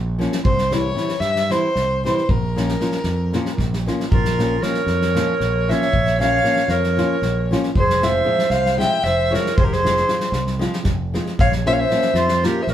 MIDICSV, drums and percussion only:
0, 0, Header, 1, 2, 480
1, 0, Start_track
1, 0, Tempo, 520833
1, 419, Time_signature, 7, 3, 24, 8
1, 11740, End_track
2, 0, Start_track
2, 0, Title_t, "Drums"
2, 186, Note_on_c, 9, 38, 25
2, 279, Note_off_c, 9, 38, 0
2, 295, Note_on_c, 9, 38, 24
2, 387, Note_off_c, 9, 38, 0
2, 415, Note_on_c, 9, 36, 83
2, 507, Note_off_c, 9, 36, 0
2, 534, Note_on_c, 9, 38, 26
2, 627, Note_off_c, 9, 38, 0
2, 655, Note_on_c, 9, 38, 30
2, 747, Note_off_c, 9, 38, 0
2, 894, Note_on_c, 9, 38, 29
2, 986, Note_off_c, 9, 38, 0
2, 1001, Note_on_c, 9, 38, 23
2, 1093, Note_off_c, 9, 38, 0
2, 1113, Note_on_c, 9, 38, 24
2, 1206, Note_off_c, 9, 38, 0
2, 1252, Note_on_c, 9, 38, 27
2, 1344, Note_off_c, 9, 38, 0
2, 1386, Note_on_c, 9, 38, 25
2, 1478, Note_off_c, 9, 38, 0
2, 1617, Note_on_c, 9, 38, 22
2, 1710, Note_off_c, 9, 38, 0
2, 1892, Note_on_c, 9, 38, 24
2, 1984, Note_off_c, 9, 38, 0
2, 2002, Note_on_c, 9, 38, 18
2, 2094, Note_off_c, 9, 38, 0
2, 2111, Note_on_c, 9, 36, 77
2, 2204, Note_off_c, 9, 36, 0
2, 2367, Note_on_c, 9, 38, 28
2, 2459, Note_off_c, 9, 38, 0
2, 2473, Note_on_c, 9, 38, 22
2, 2565, Note_off_c, 9, 38, 0
2, 2584, Note_on_c, 9, 38, 23
2, 2676, Note_off_c, 9, 38, 0
2, 2687, Note_on_c, 9, 38, 22
2, 2779, Note_off_c, 9, 38, 0
2, 2794, Note_on_c, 9, 38, 21
2, 2886, Note_off_c, 9, 38, 0
2, 3067, Note_on_c, 9, 38, 22
2, 3159, Note_off_c, 9, 38, 0
2, 3183, Note_on_c, 9, 38, 24
2, 3275, Note_off_c, 9, 38, 0
2, 3303, Note_on_c, 9, 36, 49
2, 3307, Note_on_c, 9, 38, 21
2, 3395, Note_off_c, 9, 36, 0
2, 3399, Note_off_c, 9, 38, 0
2, 3440, Note_on_c, 9, 38, 24
2, 3532, Note_off_c, 9, 38, 0
2, 3570, Note_on_c, 9, 38, 27
2, 3662, Note_off_c, 9, 38, 0
2, 3685, Note_on_c, 9, 38, 21
2, 3777, Note_off_c, 9, 38, 0
2, 3796, Note_on_c, 9, 36, 82
2, 3888, Note_off_c, 9, 36, 0
2, 3915, Note_on_c, 9, 38, 26
2, 4007, Note_off_c, 9, 38, 0
2, 4046, Note_on_c, 9, 38, 30
2, 4138, Note_off_c, 9, 38, 0
2, 4261, Note_on_c, 9, 38, 25
2, 4353, Note_off_c, 9, 38, 0
2, 4368, Note_on_c, 9, 38, 20
2, 4460, Note_off_c, 9, 38, 0
2, 4487, Note_on_c, 9, 38, 22
2, 4579, Note_off_c, 9, 38, 0
2, 4622, Note_on_c, 9, 38, 23
2, 4714, Note_off_c, 9, 38, 0
2, 4750, Note_on_c, 9, 38, 24
2, 4842, Note_off_c, 9, 38, 0
2, 4980, Note_on_c, 9, 38, 20
2, 5072, Note_off_c, 9, 38, 0
2, 5251, Note_on_c, 9, 38, 21
2, 5344, Note_off_c, 9, 38, 0
2, 5361, Note_on_c, 9, 38, 17
2, 5453, Note_off_c, 9, 38, 0
2, 5469, Note_on_c, 9, 36, 61
2, 5561, Note_off_c, 9, 36, 0
2, 5590, Note_on_c, 9, 38, 20
2, 5682, Note_off_c, 9, 38, 0
2, 5719, Note_on_c, 9, 38, 24
2, 5812, Note_off_c, 9, 38, 0
2, 5939, Note_on_c, 9, 38, 23
2, 6032, Note_off_c, 9, 38, 0
2, 6048, Note_on_c, 9, 38, 19
2, 6140, Note_off_c, 9, 38, 0
2, 6161, Note_on_c, 9, 38, 22
2, 6253, Note_off_c, 9, 38, 0
2, 6301, Note_on_c, 9, 38, 21
2, 6393, Note_off_c, 9, 38, 0
2, 6429, Note_on_c, 9, 38, 24
2, 6522, Note_off_c, 9, 38, 0
2, 6652, Note_on_c, 9, 38, 20
2, 6744, Note_off_c, 9, 38, 0
2, 6930, Note_on_c, 9, 38, 22
2, 7022, Note_off_c, 9, 38, 0
2, 7032, Note_on_c, 9, 38, 21
2, 7125, Note_off_c, 9, 38, 0
2, 7147, Note_on_c, 9, 36, 69
2, 7239, Note_off_c, 9, 36, 0
2, 7277, Note_on_c, 9, 38, 22
2, 7369, Note_off_c, 9, 38, 0
2, 7391, Note_on_c, 9, 38, 28
2, 7484, Note_off_c, 9, 38, 0
2, 7729, Note_on_c, 9, 38, 25
2, 7821, Note_off_c, 9, 38, 0
2, 7837, Note_on_c, 9, 38, 22
2, 7930, Note_off_c, 9, 38, 0
2, 7978, Note_on_c, 9, 38, 24
2, 8071, Note_off_c, 9, 38, 0
2, 8109, Note_on_c, 9, 38, 26
2, 8201, Note_off_c, 9, 38, 0
2, 8336, Note_on_c, 9, 38, 22
2, 8428, Note_off_c, 9, 38, 0
2, 8606, Note_on_c, 9, 38, 29
2, 8699, Note_off_c, 9, 38, 0
2, 8719, Note_on_c, 9, 38, 25
2, 8811, Note_off_c, 9, 38, 0
2, 8827, Note_on_c, 9, 36, 96
2, 8919, Note_off_c, 9, 36, 0
2, 8959, Note_on_c, 9, 38, 26
2, 9051, Note_off_c, 9, 38, 0
2, 9080, Note_on_c, 9, 38, 33
2, 9172, Note_off_c, 9, 38, 0
2, 9184, Note_on_c, 9, 38, 25
2, 9276, Note_off_c, 9, 38, 0
2, 9291, Note_on_c, 9, 38, 29
2, 9383, Note_off_c, 9, 38, 0
2, 9402, Note_on_c, 9, 38, 25
2, 9495, Note_off_c, 9, 38, 0
2, 9517, Note_on_c, 9, 38, 27
2, 9609, Note_off_c, 9, 38, 0
2, 9646, Note_on_c, 9, 38, 29
2, 9738, Note_off_c, 9, 38, 0
2, 9772, Note_on_c, 9, 38, 30
2, 9865, Note_off_c, 9, 38, 0
2, 9887, Note_on_c, 9, 38, 25
2, 9979, Note_off_c, 9, 38, 0
2, 9987, Note_on_c, 9, 38, 27
2, 10002, Note_on_c, 9, 36, 59
2, 10080, Note_off_c, 9, 38, 0
2, 10094, Note_off_c, 9, 36, 0
2, 10265, Note_on_c, 9, 38, 29
2, 10358, Note_off_c, 9, 38, 0
2, 10379, Note_on_c, 9, 38, 23
2, 10472, Note_off_c, 9, 38, 0
2, 10499, Note_on_c, 9, 36, 91
2, 10591, Note_off_c, 9, 36, 0
2, 10615, Note_on_c, 9, 38, 25
2, 10708, Note_off_c, 9, 38, 0
2, 10745, Note_on_c, 9, 38, 33
2, 10837, Note_off_c, 9, 38, 0
2, 10972, Note_on_c, 9, 38, 32
2, 11064, Note_off_c, 9, 38, 0
2, 11073, Note_on_c, 9, 38, 26
2, 11166, Note_off_c, 9, 38, 0
2, 11194, Note_on_c, 9, 38, 28
2, 11286, Note_off_c, 9, 38, 0
2, 11318, Note_on_c, 9, 38, 29
2, 11410, Note_off_c, 9, 38, 0
2, 11458, Note_on_c, 9, 38, 32
2, 11550, Note_off_c, 9, 38, 0
2, 11680, Note_on_c, 9, 38, 27
2, 11740, Note_off_c, 9, 38, 0
2, 11740, End_track
0, 0, End_of_file